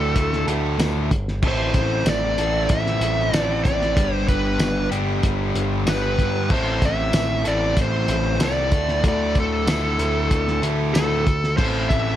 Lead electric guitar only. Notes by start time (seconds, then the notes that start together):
Already playing: A4
1.48 C5
2.09 D5
2.71 E5
3.35 D5
3.64 D5
4.14 C5
4.29 B4
5.89 B4
6.54 C5
6.85 E5
7.48 D5
7.82 C5
8.44 D5
9.08 D5
9.40 A4
10.94 A4
11.57 C5
11.89 E5